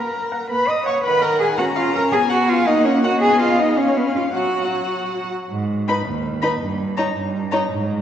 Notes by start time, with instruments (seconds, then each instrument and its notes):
Already playing: viola A#3, cello A#4, violin A#5
0.32 violin F#5
0.50 viola A#3, cello B4, violin B5
0.68 cello D#5, violin D#6
0.86 cello C#5, violin F#5 C#6
1.04 viola D#3, cello B4, violin F#5 B5
1.21 cello A#4, violin A#5
1.40 cello G#4, violin G#5
1.57 viola C#4, cello F#4, violin F#5 A#5
1.76 cello F4, violin F5
1.94 cello A#4, violin A#5
2.10 viola B3, cello G#4, violin G#5
2.29 cello F#4, violin F#5
2.47 cello F4, violin F5
2.67 viola A#3, cello D#4, violin D#5 F#5
2.84 cello C#4, violin C#5
3.04 cello F#4, violin F#5
3.21 viola B3, cello G#4, violin D#5 G#5
3.39 cello F4, violin F5
3.58 cello D#4, violin D#5
3.76 cello C#4, viola C#4, violin C#5 F5
3.96 cello B3, violin B4
4.07 cello C#4, violin C#5
4.16 cello F4, violin F5
4.33 viola F#3, cello F#4, violin F#5
5.50 cello G#2
5.88 viola D#4, violin B4 B5
6.06 cello D#2
6.42 viola D#4, violin B4 B5
6.61 cello G2
6.97 viola D#4, violin C#5 A#5
7.15 cello G2
7.51 viola D#4, violin C#5 A#5
7.70 cello G#2